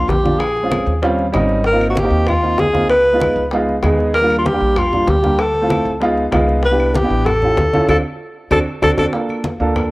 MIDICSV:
0, 0, Header, 1, 5, 480
1, 0, Start_track
1, 0, Tempo, 312012
1, 622, Time_signature, 4, 2, 24, 8
1, 15246, End_track
2, 0, Start_track
2, 0, Title_t, "Alto saxophone"
2, 0, Program_c, 0, 65
2, 128, Note_on_c, 0, 67, 89
2, 594, Note_on_c, 0, 68, 81
2, 617, Note_off_c, 0, 67, 0
2, 1567, Note_off_c, 0, 68, 0
2, 2559, Note_on_c, 0, 70, 90
2, 2895, Note_off_c, 0, 70, 0
2, 2923, Note_on_c, 0, 66, 67
2, 3049, Note_on_c, 0, 67, 93
2, 3072, Note_off_c, 0, 66, 0
2, 3510, Note_on_c, 0, 65, 88
2, 3534, Note_off_c, 0, 67, 0
2, 3989, Note_on_c, 0, 68, 95
2, 4012, Note_off_c, 0, 65, 0
2, 4455, Note_off_c, 0, 68, 0
2, 4464, Note_on_c, 0, 71, 96
2, 5359, Note_off_c, 0, 71, 0
2, 6376, Note_on_c, 0, 70, 100
2, 6722, Note_off_c, 0, 70, 0
2, 6744, Note_on_c, 0, 65, 67
2, 6860, Note_on_c, 0, 67, 98
2, 6883, Note_off_c, 0, 65, 0
2, 7356, Note_on_c, 0, 65, 90
2, 7379, Note_off_c, 0, 67, 0
2, 7837, Note_on_c, 0, 67, 96
2, 7860, Note_off_c, 0, 65, 0
2, 8308, Note_on_c, 0, 69, 83
2, 8332, Note_off_c, 0, 67, 0
2, 9261, Note_off_c, 0, 69, 0
2, 10229, Note_on_c, 0, 71, 89
2, 10702, Note_on_c, 0, 67, 90
2, 10725, Note_off_c, 0, 71, 0
2, 11161, Note_on_c, 0, 69, 97
2, 11184, Note_off_c, 0, 67, 0
2, 12128, Note_off_c, 0, 69, 0
2, 12149, Note_on_c, 0, 69, 87
2, 12260, Note_off_c, 0, 69, 0
2, 13106, Note_on_c, 0, 69, 89
2, 13218, Note_off_c, 0, 69, 0
2, 13588, Note_on_c, 0, 69, 98
2, 13700, Note_off_c, 0, 69, 0
2, 13823, Note_on_c, 0, 69, 88
2, 13936, Note_off_c, 0, 69, 0
2, 15246, End_track
3, 0, Start_track
3, 0, Title_t, "Grand piano"
3, 0, Program_c, 1, 0
3, 0, Note_on_c, 1, 53, 64
3, 0, Note_on_c, 1, 58, 59
3, 0, Note_on_c, 1, 62, 59
3, 0, Note_on_c, 1, 65, 68
3, 231, Note_off_c, 1, 53, 0
3, 237, Note_off_c, 1, 58, 0
3, 241, Note_off_c, 1, 62, 0
3, 243, Note_off_c, 1, 65, 0
3, 363, Note_on_c, 1, 53, 77
3, 374, Note_on_c, 1, 58, 70
3, 384, Note_on_c, 1, 62, 75
3, 389, Note_on_c, 1, 65, 79
3, 612, Note_off_c, 1, 53, 0
3, 617, Note_off_c, 1, 58, 0
3, 623, Note_off_c, 1, 62, 0
3, 625, Note_off_c, 1, 65, 0
3, 965, Note_on_c, 1, 56, 79
3, 975, Note_on_c, 1, 60, 75
3, 981, Note_on_c, 1, 61, 68
3, 990, Note_on_c, 1, 65, 88
3, 1393, Note_off_c, 1, 56, 0
3, 1398, Note_off_c, 1, 60, 0
3, 1401, Note_off_c, 1, 61, 0
3, 1405, Note_off_c, 1, 65, 0
3, 1573, Note_on_c, 1, 55, 104
3, 1576, Note_on_c, 1, 60, 94
3, 1586, Note_on_c, 1, 61, 99
3, 1593, Note_on_c, 1, 65, 111
3, 1912, Note_off_c, 1, 55, 0
3, 1914, Note_off_c, 1, 60, 0
3, 1919, Note_off_c, 1, 61, 0
3, 1922, Note_off_c, 1, 65, 0
3, 2036, Note_on_c, 1, 55, 102
3, 2047, Note_on_c, 1, 60, 88
3, 2053, Note_on_c, 1, 61, 89
3, 2062, Note_on_c, 1, 63, 113
3, 2468, Note_off_c, 1, 55, 0
3, 2473, Note_off_c, 1, 60, 0
3, 2476, Note_off_c, 1, 61, 0
3, 2481, Note_off_c, 1, 63, 0
3, 2650, Note_on_c, 1, 58, 83
3, 2650, Note_on_c, 1, 60, 77
3, 2662, Note_on_c, 1, 63, 78
3, 2672, Note_on_c, 1, 65, 97
3, 2990, Note_off_c, 1, 60, 0
3, 2991, Note_off_c, 1, 58, 0
3, 2996, Note_off_c, 1, 63, 0
3, 3001, Note_off_c, 1, 65, 0
3, 3120, Note_on_c, 1, 58, 84
3, 3135, Note_on_c, 1, 60, 76
3, 3146, Note_on_c, 1, 63, 75
3, 3151, Note_on_c, 1, 67, 93
3, 3549, Note_off_c, 1, 58, 0
3, 3557, Note_off_c, 1, 60, 0
3, 3562, Note_off_c, 1, 63, 0
3, 3565, Note_off_c, 1, 67, 0
3, 3730, Note_on_c, 1, 58, 68
3, 3734, Note_on_c, 1, 60, 64
3, 3744, Note_on_c, 1, 63, 65
3, 3752, Note_on_c, 1, 65, 74
3, 4070, Note_off_c, 1, 58, 0
3, 4072, Note_off_c, 1, 60, 0
3, 4077, Note_off_c, 1, 63, 0
3, 4081, Note_off_c, 1, 65, 0
3, 4196, Note_on_c, 1, 58, 81
3, 4213, Note_on_c, 1, 60, 74
3, 4218, Note_on_c, 1, 63, 69
3, 4224, Note_on_c, 1, 65, 84
3, 4447, Note_off_c, 1, 58, 0
3, 4455, Note_off_c, 1, 60, 0
3, 4458, Note_off_c, 1, 63, 0
3, 4461, Note_off_c, 1, 65, 0
3, 4808, Note_on_c, 1, 56, 81
3, 4812, Note_on_c, 1, 59, 74
3, 4824, Note_on_c, 1, 63, 74
3, 4828, Note_on_c, 1, 65, 89
3, 5233, Note_off_c, 1, 56, 0
3, 5235, Note_off_c, 1, 59, 0
3, 5241, Note_off_c, 1, 63, 0
3, 5242, Note_off_c, 1, 65, 0
3, 5425, Note_on_c, 1, 56, 101
3, 5431, Note_on_c, 1, 59, 90
3, 5437, Note_on_c, 1, 63, 89
3, 5446, Note_on_c, 1, 65, 108
3, 5757, Note_off_c, 1, 56, 0
3, 5760, Note_off_c, 1, 59, 0
3, 5763, Note_off_c, 1, 63, 0
3, 5767, Note_off_c, 1, 65, 0
3, 5896, Note_on_c, 1, 56, 99
3, 5903, Note_on_c, 1, 59, 96
3, 5910, Note_on_c, 1, 63, 96
3, 5915, Note_on_c, 1, 68, 105
3, 6316, Note_off_c, 1, 56, 0
3, 6320, Note_off_c, 1, 59, 0
3, 6323, Note_off_c, 1, 63, 0
3, 6325, Note_off_c, 1, 68, 0
3, 6481, Note_on_c, 1, 55, 77
3, 6493, Note_on_c, 1, 58, 76
3, 6500, Note_on_c, 1, 62, 76
3, 6506, Note_on_c, 1, 65, 93
3, 6825, Note_off_c, 1, 55, 0
3, 6830, Note_off_c, 1, 58, 0
3, 6834, Note_off_c, 1, 62, 0
3, 6837, Note_off_c, 1, 65, 0
3, 6957, Note_on_c, 1, 55, 79
3, 6965, Note_on_c, 1, 58, 76
3, 6971, Note_on_c, 1, 62, 70
3, 6971, Note_on_c, 1, 67, 88
3, 7386, Note_off_c, 1, 55, 0
3, 7390, Note_off_c, 1, 58, 0
3, 7393, Note_off_c, 1, 62, 0
3, 7393, Note_off_c, 1, 67, 0
3, 7566, Note_on_c, 1, 55, 67
3, 7574, Note_on_c, 1, 58, 61
3, 7588, Note_on_c, 1, 62, 63
3, 7597, Note_on_c, 1, 65, 78
3, 7907, Note_off_c, 1, 55, 0
3, 7910, Note_off_c, 1, 58, 0
3, 7918, Note_off_c, 1, 62, 0
3, 7922, Note_off_c, 1, 65, 0
3, 8037, Note_on_c, 1, 55, 83
3, 8044, Note_on_c, 1, 58, 74
3, 8056, Note_on_c, 1, 62, 72
3, 8066, Note_on_c, 1, 67, 85
3, 8286, Note_off_c, 1, 55, 0
3, 8290, Note_off_c, 1, 58, 0
3, 8295, Note_off_c, 1, 62, 0
3, 8300, Note_off_c, 1, 67, 0
3, 8639, Note_on_c, 1, 57, 81
3, 8648, Note_on_c, 1, 60, 80
3, 8652, Note_on_c, 1, 64, 77
3, 8662, Note_on_c, 1, 65, 93
3, 9067, Note_off_c, 1, 57, 0
3, 9071, Note_off_c, 1, 60, 0
3, 9073, Note_off_c, 1, 64, 0
3, 9078, Note_off_c, 1, 65, 0
3, 9235, Note_on_c, 1, 56, 102
3, 9253, Note_on_c, 1, 59, 94
3, 9262, Note_on_c, 1, 63, 93
3, 9267, Note_on_c, 1, 65, 116
3, 9581, Note_off_c, 1, 56, 0
3, 9590, Note_off_c, 1, 59, 0
3, 9594, Note_off_c, 1, 63, 0
3, 9597, Note_off_c, 1, 65, 0
3, 9714, Note_on_c, 1, 56, 102
3, 9729, Note_on_c, 1, 59, 94
3, 9739, Note_on_c, 1, 63, 98
3, 9741, Note_on_c, 1, 65, 113
3, 10144, Note_off_c, 1, 56, 0
3, 10152, Note_off_c, 1, 59, 0
3, 10157, Note_off_c, 1, 63, 0
3, 10158, Note_off_c, 1, 65, 0
3, 10323, Note_on_c, 1, 59, 84
3, 10335, Note_on_c, 1, 62, 81
3, 10343, Note_on_c, 1, 64, 76
3, 10344, Note_on_c, 1, 67, 97
3, 10665, Note_off_c, 1, 59, 0
3, 10671, Note_off_c, 1, 62, 0
3, 10675, Note_off_c, 1, 64, 0
3, 10675, Note_off_c, 1, 67, 0
3, 10812, Note_on_c, 1, 59, 84
3, 10822, Note_on_c, 1, 62, 73
3, 10827, Note_on_c, 1, 64, 80
3, 10839, Note_on_c, 1, 67, 95
3, 11173, Note_off_c, 1, 59, 0
3, 11178, Note_off_c, 1, 62, 0
3, 11181, Note_off_c, 1, 64, 0
3, 11187, Note_off_c, 1, 67, 0
3, 11418, Note_on_c, 1, 61, 65
3, 11428, Note_on_c, 1, 64, 64
3, 11444, Note_on_c, 1, 65, 65
3, 11450, Note_on_c, 1, 67, 78
3, 11753, Note_off_c, 1, 61, 0
3, 11757, Note_off_c, 1, 64, 0
3, 11766, Note_off_c, 1, 65, 0
3, 11769, Note_off_c, 1, 67, 0
3, 11895, Note_on_c, 1, 61, 99
3, 11904, Note_on_c, 1, 64, 85
3, 11911, Note_on_c, 1, 65, 90
3, 11918, Note_on_c, 1, 69, 103
3, 12122, Note_off_c, 1, 65, 0
3, 12135, Note_off_c, 1, 61, 0
3, 12140, Note_off_c, 1, 64, 0
3, 12143, Note_on_c, 1, 60, 93
3, 12145, Note_on_c, 1, 62, 90
3, 12145, Note_on_c, 1, 65, 88
3, 12146, Note_off_c, 1, 69, 0
3, 12293, Note_off_c, 1, 60, 0
3, 12294, Note_off_c, 1, 65, 0
3, 12295, Note_off_c, 1, 62, 0
3, 13097, Note_on_c, 1, 66, 96
3, 13099, Note_on_c, 1, 62, 105
3, 13101, Note_on_c, 1, 60, 96
3, 13250, Note_off_c, 1, 66, 0
3, 13251, Note_off_c, 1, 62, 0
3, 13253, Note_off_c, 1, 60, 0
3, 13571, Note_on_c, 1, 62, 96
3, 13573, Note_on_c, 1, 60, 105
3, 13573, Note_on_c, 1, 66, 99
3, 13726, Note_off_c, 1, 62, 0
3, 13728, Note_off_c, 1, 60, 0
3, 13728, Note_off_c, 1, 66, 0
3, 13801, Note_on_c, 1, 66, 82
3, 13805, Note_on_c, 1, 62, 85
3, 13807, Note_on_c, 1, 60, 89
3, 13961, Note_off_c, 1, 66, 0
3, 13963, Note_off_c, 1, 62, 0
3, 13965, Note_off_c, 1, 60, 0
3, 14036, Note_on_c, 1, 58, 78
3, 14048, Note_on_c, 1, 62, 71
3, 14054, Note_on_c, 1, 65, 72
3, 14064, Note_on_c, 1, 69, 78
3, 14551, Note_off_c, 1, 58, 0
3, 14557, Note_off_c, 1, 62, 0
3, 14560, Note_off_c, 1, 65, 0
3, 14565, Note_off_c, 1, 69, 0
3, 14769, Note_on_c, 1, 58, 91
3, 14772, Note_on_c, 1, 62, 80
3, 14783, Note_on_c, 1, 65, 80
3, 14793, Note_on_c, 1, 69, 94
3, 15194, Note_off_c, 1, 58, 0
3, 15196, Note_off_c, 1, 62, 0
3, 15201, Note_off_c, 1, 65, 0
3, 15206, Note_off_c, 1, 69, 0
3, 15246, End_track
4, 0, Start_track
4, 0, Title_t, "Upright bass"
4, 0, Program_c, 2, 32
4, 123, Note_on_c, 2, 34, 89
4, 1246, Note_off_c, 2, 34, 0
4, 1328, Note_on_c, 2, 39, 90
4, 2003, Note_off_c, 2, 39, 0
4, 2053, Note_on_c, 2, 32, 97
4, 3170, Note_off_c, 2, 32, 0
4, 3239, Note_on_c, 2, 39, 92
4, 3917, Note_off_c, 2, 39, 0
4, 5166, Note_on_c, 2, 37, 88
4, 5841, Note_off_c, 2, 37, 0
4, 5889, Note_on_c, 2, 39, 97
4, 7007, Note_off_c, 2, 39, 0
4, 7085, Note_on_c, 2, 34, 87
4, 7759, Note_off_c, 2, 34, 0
4, 7808, Note_on_c, 2, 38, 93
4, 8926, Note_off_c, 2, 38, 0
4, 9003, Note_on_c, 2, 37, 88
4, 9678, Note_off_c, 2, 37, 0
4, 9731, Note_on_c, 2, 36, 98
4, 10847, Note_off_c, 2, 36, 0
4, 10925, Note_on_c, 2, 33, 87
4, 11599, Note_off_c, 2, 33, 0
4, 11647, Note_on_c, 2, 38, 90
4, 12097, Note_off_c, 2, 38, 0
4, 12128, Note_on_c, 2, 38, 93
4, 12310, Note_off_c, 2, 38, 0
4, 13086, Note_on_c, 2, 38, 92
4, 13269, Note_off_c, 2, 38, 0
4, 13576, Note_on_c, 2, 38, 93
4, 13755, Note_off_c, 2, 38, 0
4, 13811, Note_on_c, 2, 38, 90
4, 13992, Note_off_c, 2, 38, 0
4, 14767, Note_on_c, 2, 38, 84
4, 15246, Note_off_c, 2, 38, 0
4, 15246, End_track
5, 0, Start_track
5, 0, Title_t, "Drums"
5, 139, Note_on_c, 9, 60, 64
5, 139, Note_on_c, 9, 61, 85
5, 155, Note_on_c, 9, 63, 86
5, 292, Note_off_c, 9, 60, 0
5, 292, Note_off_c, 9, 61, 0
5, 309, Note_off_c, 9, 63, 0
5, 394, Note_on_c, 9, 63, 83
5, 547, Note_off_c, 9, 63, 0
5, 615, Note_on_c, 9, 60, 72
5, 618, Note_on_c, 9, 75, 64
5, 622, Note_on_c, 9, 63, 34
5, 769, Note_off_c, 9, 60, 0
5, 772, Note_off_c, 9, 75, 0
5, 776, Note_off_c, 9, 63, 0
5, 866, Note_on_c, 9, 60, 35
5, 877, Note_on_c, 9, 63, 33
5, 1020, Note_off_c, 9, 60, 0
5, 1031, Note_off_c, 9, 63, 0
5, 1099, Note_on_c, 9, 60, 60
5, 1099, Note_on_c, 9, 75, 62
5, 1101, Note_on_c, 9, 63, 97
5, 1253, Note_off_c, 9, 60, 0
5, 1253, Note_off_c, 9, 75, 0
5, 1255, Note_off_c, 9, 63, 0
5, 1340, Note_on_c, 9, 63, 32
5, 1343, Note_on_c, 9, 60, 36
5, 1494, Note_off_c, 9, 63, 0
5, 1497, Note_off_c, 9, 60, 0
5, 1581, Note_on_c, 9, 63, 33
5, 1582, Note_on_c, 9, 60, 75
5, 1735, Note_off_c, 9, 60, 0
5, 1735, Note_off_c, 9, 63, 0
5, 1828, Note_on_c, 9, 63, 35
5, 1981, Note_off_c, 9, 63, 0
5, 2055, Note_on_c, 9, 75, 63
5, 2057, Note_on_c, 9, 60, 64
5, 2057, Note_on_c, 9, 61, 79
5, 2069, Note_on_c, 9, 63, 83
5, 2209, Note_off_c, 9, 75, 0
5, 2210, Note_off_c, 9, 60, 0
5, 2210, Note_off_c, 9, 61, 0
5, 2223, Note_off_c, 9, 63, 0
5, 2293, Note_on_c, 9, 60, 31
5, 2293, Note_on_c, 9, 63, 36
5, 2447, Note_off_c, 9, 60, 0
5, 2447, Note_off_c, 9, 63, 0
5, 2527, Note_on_c, 9, 60, 68
5, 2545, Note_on_c, 9, 63, 34
5, 2681, Note_off_c, 9, 60, 0
5, 2699, Note_off_c, 9, 63, 0
5, 2788, Note_on_c, 9, 63, 36
5, 2788, Note_on_c, 9, 75, 66
5, 2941, Note_off_c, 9, 75, 0
5, 2942, Note_off_c, 9, 63, 0
5, 3006, Note_on_c, 9, 60, 60
5, 3029, Note_on_c, 9, 63, 100
5, 3160, Note_off_c, 9, 60, 0
5, 3183, Note_off_c, 9, 63, 0
5, 3487, Note_on_c, 9, 60, 70
5, 3510, Note_on_c, 9, 75, 63
5, 3514, Note_on_c, 9, 63, 33
5, 3514, Note_on_c, 9, 64, 80
5, 3641, Note_off_c, 9, 60, 0
5, 3664, Note_off_c, 9, 75, 0
5, 3667, Note_off_c, 9, 63, 0
5, 3667, Note_off_c, 9, 64, 0
5, 3753, Note_on_c, 9, 63, 35
5, 3906, Note_off_c, 9, 63, 0
5, 3970, Note_on_c, 9, 60, 66
5, 3970, Note_on_c, 9, 61, 78
5, 3988, Note_on_c, 9, 63, 86
5, 4124, Note_off_c, 9, 60, 0
5, 4124, Note_off_c, 9, 61, 0
5, 4142, Note_off_c, 9, 63, 0
5, 4224, Note_on_c, 9, 63, 84
5, 4378, Note_off_c, 9, 63, 0
5, 4455, Note_on_c, 9, 60, 69
5, 4461, Note_on_c, 9, 75, 63
5, 4472, Note_on_c, 9, 63, 34
5, 4609, Note_off_c, 9, 60, 0
5, 4614, Note_off_c, 9, 75, 0
5, 4626, Note_off_c, 9, 63, 0
5, 4694, Note_on_c, 9, 60, 36
5, 4707, Note_on_c, 9, 63, 34
5, 4848, Note_off_c, 9, 60, 0
5, 4861, Note_off_c, 9, 63, 0
5, 4927, Note_on_c, 9, 60, 60
5, 4946, Note_on_c, 9, 63, 95
5, 4946, Note_on_c, 9, 75, 60
5, 5081, Note_off_c, 9, 60, 0
5, 5100, Note_off_c, 9, 63, 0
5, 5100, Note_off_c, 9, 75, 0
5, 5166, Note_on_c, 9, 60, 35
5, 5182, Note_on_c, 9, 63, 32
5, 5320, Note_off_c, 9, 60, 0
5, 5335, Note_off_c, 9, 63, 0
5, 5404, Note_on_c, 9, 60, 70
5, 5435, Note_on_c, 9, 63, 36
5, 5558, Note_off_c, 9, 60, 0
5, 5589, Note_off_c, 9, 63, 0
5, 5673, Note_on_c, 9, 63, 32
5, 5827, Note_off_c, 9, 63, 0
5, 5887, Note_on_c, 9, 60, 69
5, 5887, Note_on_c, 9, 61, 82
5, 5899, Note_on_c, 9, 75, 61
5, 5904, Note_on_c, 9, 63, 83
5, 6041, Note_off_c, 9, 60, 0
5, 6041, Note_off_c, 9, 61, 0
5, 6053, Note_off_c, 9, 75, 0
5, 6058, Note_off_c, 9, 63, 0
5, 6133, Note_on_c, 9, 60, 32
5, 6159, Note_on_c, 9, 63, 34
5, 6287, Note_off_c, 9, 60, 0
5, 6312, Note_off_c, 9, 63, 0
5, 6374, Note_on_c, 9, 60, 70
5, 6393, Note_on_c, 9, 63, 34
5, 6527, Note_off_c, 9, 60, 0
5, 6547, Note_off_c, 9, 63, 0
5, 6619, Note_on_c, 9, 75, 64
5, 6625, Note_on_c, 9, 63, 34
5, 6773, Note_off_c, 9, 75, 0
5, 6779, Note_off_c, 9, 63, 0
5, 6856, Note_on_c, 9, 60, 60
5, 6861, Note_on_c, 9, 63, 96
5, 7009, Note_off_c, 9, 60, 0
5, 7014, Note_off_c, 9, 63, 0
5, 7327, Note_on_c, 9, 75, 66
5, 7328, Note_on_c, 9, 60, 75
5, 7342, Note_on_c, 9, 63, 34
5, 7342, Note_on_c, 9, 64, 84
5, 7481, Note_off_c, 9, 75, 0
5, 7482, Note_off_c, 9, 60, 0
5, 7496, Note_off_c, 9, 63, 0
5, 7496, Note_off_c, 9, 64, 0
5, 7584, Note_on_c, 9, 63, 32
5, 7584, Note_on_c, 9, 64, 73
5, 7737, Note_off_c, 9, 63, 0
5, 7737, Note_off_c, 9, 64, 0
5, 7807, Note_on_c, 9, 60, 65
5, 7807, Note_on_c, 9, 61, 79
5, 7814, Note_on_c, 9, 63, 90
5, 7961, Note_off_c, 9, 60, 0
5, 7961, Note_off_c, 9, 61, 0
5, 7968, Note_off_c, 9, 63, 0
5, 8058, Note_on_c, 9, 63, 84
5, 8212, Note_off_c, 9, 63, 0
5, 8286, Note_on_c, 9, 63, 33
5, 8288, Note_on_c, 9, 60, 75
5, 8295, Note_on_c, 9, 75, 64
5, 8440, Note_off_c, 9, 63, 0
5, 8442, Note_off_c, 9, 60, 0
5, 8449, Note_off_c, 9, 75, 0
5, 8532, Note_on_c, 9, 60, 35
5, 8534, Note_on_c, 9, 63, 35
5, 8686, Note_off_c, 9, 60, 0
5, 8688, Note_off_c, 9, 63, 0
5, 8770, Note_on_c, 9, 60, 63
5, 8774, Note_on_c, 9, 63, 93
5, 8785, Note_on_c, 9, 75, 63
5, 8924, Note_off_c, 9, 60, 0
5, 8927, Note_off_c, 9, 63, 0
5, 8939, Note_off_c, 9, 75, 0
5, 9017, Note_on_c, 9, 63, 35
5, 9019, Note_on_c, 9, 60, 36
5, 9171, Note_off_c, 9, 63, 0
5, 9173, Note_off_c, 9, 60, 0
5, 9251, Note_on_c, 9, 63, 34
5, 9255, Note_on_c, 9, 60, 69
5, 9404, Note_off_c, 9, 63, 0
5, 9409, Note_off_c, 9, 60, 0
5, 9501, Note_on_c, 9, 63, 36
5, 9654, Note_off_c, 9, 63, 0
5, 9728, Note_on_c, 9, 60, 71
5, 9728, Note_on_c, 9, 61, 77
5, 9733, Note_on_c, 9, 63, 86
5, 9733, Note_on_c, 9, 75, 67
5, 9882, Note_off_c, 9, 60, 0
5, 9882, Note_off_c, 9, 61, 0
5, 9886, Note_off_c, 9, 75, 0
5, 9887, Note_off_c, 9, 63, 0
5, 9969, Note_on_c, 9, 60, 34
5, 9984, Note_on_c, 9, 63, 35
5, 10123, Note_off_c, 9, 60, 0
5, 10138, Note_off_c, 9, 63, 0
5, 10196, Note_on_c, 9, 60, 67
5, 10217, Note_on_c, 9, 63, 37
5, 10350, Note_off_c, 9, 60, 0
5, 10371, Note_off_c, 9, 63, 0
5, 10459, Note_on_c, 9, 75, 62
5, 10460, Note_on_c, 9, 63, 34
5, 10612, Note_off_c, 9, 75, 0
5, 10614, Note_off_c, 9, 63, 0
5, 10683, Note_on_c, 9, 60, 62
5, 10699, Note_on_c, 9, 63, 102
5, 10837, Note_off_c, 9, 60, 0
5, 10853, Note_off_c, 9, 63, 0
5, 11172, Note_on_c, 9, 60, 73
5, 11179, Note_on_c, 9, 63, 36
5, 11179, Note_on_c, 9, 64, 88
5, 11180, Note_on_c, 9, 75, 65
5, 11326, Note_off_c, 9, 60, 0
5, 11332, Note_off_c, 9, 63, 0
5, 11332, Note_off_c, 9, 64, 0
5, 11334, Note_off_c, 9, 75, 0
5, 11418, Note_on_c, 9, 63, 33
5, 11418, Note_on_c, 9, 64, 69
5, 11572, Note_off_c, 9, 63, 0
5, 11572, Note_off_c, 9, 64, 0
5, 11651, Note_on_c, 9, 60, 68
5, 11651, Note_on_c, 9, 61, 85
5, 11658, Note_on_c, 9, 63, 90
5, 11805, Note_off_c, 9, 60, 0
5, 11805, Note_off_c, 9, 61, 0
5, 11812, Note_off_c, 9, 63, 0
5, 11900, Note_on_c, 9, 63, 89
5, 12054, Note_off_c, 9, 63, 0
5, 12130, Note_on_c, 9, 61, 97
5, 12133, Note_on_c, 9, 63, 97
5, 12141, Note_on_c, 9, 75, 97
5, 12284, Note_off_c, 9, 61, 0
5, 12287, Note_off_c, 9, 63, 0
5, 12295, Note_off_c, 9, 75, 0
5, 13090, Note_on_c, 9, 61, 100
5, 13092, Note_on_c, 9, 63, 96
5, 13101, Note_on_c, 9, 75, 104
5, 13244, Note_off_c, 9, 61, 0
5, 13246, Note_off_c, 9, 63, 0
5, 13255, Note_off_c, 9, 75, 0
5, 13573, Note_on_c, 9, 61, 97
5, 13578, Note_on_c, 9, 63, 103
5, 13580, Note_on_c, 9, 75, 97
5, 13726, Note_off_c, 9, 61, 0
5, 13732, Note_off_c, 9, 63, 0
5, 13733, Note_off_c, 9, 75, 0
5, 13809, Note_on_c, 9, 61, 95
5, 13814, Note_on_c, 9, 63, 96
5, 13829, Note_on_c, 9, 75, 95
5, 13963, Note_off_c, 9, 61, 0
5, 13968, Note_off_c, 9, 63, 0
5, 13983, Note_off_c, 9, 75, 0
5, 14042, Note_on_c, 9, 63, 32
5, 14044, Note_on_c, 9, 60, 69
5, 14196, Note_off_c, 9, 63, 0
5, 14198, Note_off_c, 9, 60, 0
5, 14293, Note_on_c, 9, 63, 35
5, 14308, Note_on_c, 9, 75, 60
5, 14447, Note_off_c, 9, 63, 0
5, 14462, Note_off_c, 9, 75, 0
5, 14523, Note_on_c, 9, 63, 91
5, 14536, Note_on_c, 9, 60, 63
5, 14676, Note_off_c, 9, 63, 0
5, 14690, Note_off_c, 9, 60, 0
5, 15013, Note_on_c, 9, 63, 34
5, 15013, Note_on_c, 9, 64, 81
5, 15014, Note_on_c, 9, 60, 66
5, 15018, Note_on_c, 9, 75, 66
5, 15167, Note_off_c, 9, 63, 0
5, 15167, Note_off_c, 9, 64, 0
5, 15168, Note_off_c, 9, 60, 0
5, 15172, Note_off_c, 9, 75, 0
5, 15246, End_track
0, 0, End_of_file